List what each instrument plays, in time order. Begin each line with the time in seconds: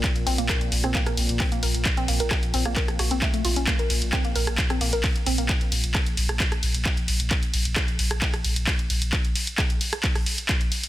Already playing: synth drone A#2 A#3
0.04 kick, clap, closed hi-hat, ride
0.16 sub bass A#1, closed hi-hat, ride
0.27 sub bass A#1, synth arpeggio sound C4, open hi-hat, ride
0.38 sub bass A#1, synth arpeggio sound A#3, closed hi-hat, ride
0.49 synth arpeggio sound A#4, kick, cross-stick, clap, closed hi-hat, ride
0.61 sub bass A#1, closed hi-hat, ride
0.72 sub bass A#1, open hi-hat, ride
0.84 sub bass A#1, synth arpeggio sound C4, cross-stick, ride
0.95 synth arpeggio sound A#3, kick, clap, closed hi-hat, ride
1.06 sub bass A#1, synth arpeggio sound A#4, cross-stick, closed hi-hat, ride
1.17 sub bass A#1, open hi-hat, ride
1.29 sub bass A#1, closed hi-hat, ride
1.40 synth arpeggio sound C4, kick, clap, open hi-hat, ride
1.52 sub bass A#1, synth arpeggio sound A#3, closed hi-hat, ride
1.63 sub bass A#1, synth arpeggio sound A#4, open hi-hat, ride
1.75 sub bass A#1, closed hi-hat, ride
1.85 kick, clap, closed hi-hat, ride
1.97 sub bass A#1, synth arpeggio sound C4, closed hi-hat, ride
2.08 sub bass A#1, synth arpeggio sound A#3, open hi-hat, ride
2.20 sub bass A#1, synth arpeggio sound A#4, closed hi-hat, ride
2.31 kick, cross-stick, clap, closed hi-hat, ride
2.43 sub bass A#1, closed hi-hat, ride
2.54 sub bass A#1, synth arpeggio sound C4, open hi-hat, ride
2.65 sub bass A#1, synth arpeggio sound A#3, cross-stick, closed hi-hat, ride
2.76 synth arpeggio sound A#4, kick, clap, closed hi-hat, ride
2.88 sub bass A#1, cross-stick, closed hi-hat, ride
2.99 sub bass A#1, synth arpeggio sound F#4, cross-stick, open hi-hat, ride
3.11 sub bass A#1, synth arpeggio sound C4, closed hi-hat, ride
3.22 synth arpeggio sound A3, kick, clap, closed hi-hat, ride
3.34 sub bass A#1, synth arpeggio sound A3, closed hi-hat, ride
3.45 sub bass A#1, synth arpeggio sound F4, open hi-hat, ride
3.56 sub bass A#1, synth arpeggio sound C#4, closed hi-hat, ride
3.67 synth arpeggio sound A#3, kick, clap, closed hi-hat, ride
3.79 sub bass A#1, synth arpeggio sound A#4, closed hi-hat, ride
3.90 sub bass A#1, open hi-hat, ride
4.02 sub bass A#1, closed hi-hat, ride
4.13 synth arpeggio sound C4, kick, cross-stick, clap, closed hi-hat, ride
4.25 sub bass A#1, synth arpeggio sound A#3, closed hi-hat, ride
4.36 sub bass A#1, synth arpeggio sound A#4, open hi-hat, ride
4.47 sub bass A#1, cross-stick, closed hi-hat, ride
4.58 kick, clap, closed hi-hat, ride
4.70 sub bass A#1, synth arpeggio sound C4, cross-stick, closed hi-hat, ride
4.81 sub bass A#1, synth arpeggio sound A#3, open hi-hat, ride
4.93 sub bass A#1, synth arpeggio sound A#4, closed hi-hat, ride
5.04 kick, clap, open hi-hat, ride
5.16 sub bass A#1, closed hi-hat, ride
5.26 sub bass A#1, synth arpeggio sound C4, open hi-hat, ride
5.38 sub bass A#1, synth arpeggio sound A#3, closed hi-hat, ride
5.49 kick, clap, closed hi-hat, ride
5.61 sub bass A#1, closed hi-hat, ride
5.72 sub bass A#1, open hi-hat, ride
5.84 sub bass A#1, closed hi-hat, ride
5.95 kick, cross-stick, clap, closed hi-hat, ride
6.06 sub bass A#1, closed hi-hat, ride
6.17 sub bass A#1, open hi-hat, ride
6.29 sub bass A#1, cross-stick, closed hi-hat, ride
6.40 kick, clap, closed hi-hat, ride
6.52 sub bass A#1, cross-stick, closed hi-hat, ride
6.63 sub bass A#1, open hi-hat, ride
6.75 sub bass A#1, closed hi-hat, ride
6.86 kick, clap, closed hi-hat, ride
6.97 sub bass A#1, closed hi-hat, ride
7.08 sub bass A#1, open hi-hat, ride
7.20 sub bass A#1, closed hi-hat, ride
7.31 kick, clap, closed hi-hat, ride
7.43 sub bass A#1, closed hi-hat, ride
7.54 sub bass A#1, open hi-hat, ride
7.65 sub bass A#1, closed hi-hat, ride
7.76 kick, cross-stick, clap, closed hi-hat, ride
7.88 sub bass A#1, closed hi-hat, ride
7.99 sub bass A#1, open hi-hat, ride
8.11 sub bass A#1, cross-stick, closed hi-hat, ride
8.22 kick, clap, closed hi-hat, ride
8.34 sub bass A#1, cross-stick, closed hi-hat, ride
8.45 sub bass A#1, open hi-hat, ride
8.56 sub bass A#1, closed hi-hat, ride
8.67 kick, clap, open hi-hat, ride
8.79 sub bass A#1, closed hi-hat, ride
8.90 sub bass A#1, open hi-hat, ride
9.02 sub bass A#1, closed hi-hat, ride
9.13 kick, clap, closed hi-hat, ride
9.25 closed hi-hat, ride
9.36 open hi-hat, ride
9.47 closed hi-hat, ride
9.58 kick, cross-stick, clap, closed hi-hat, ride
9.70 closed hi-hat, ride
9.81 open hi-hat, ride
9.93 cross-stick, closed hi-hat, ride
10.04 kick, clap, closed hi-hat, ride
10.15 cross-stick, open hi-hat, ride
10.26 open hi-hat, ride
10.38 closed hi-hat, ride
10.49 kick, clap, closed hi-hat, ride
10.61 closed hi-hat, ride
10.72 open hi-hat, ride
10.84 closed hi-hat, ride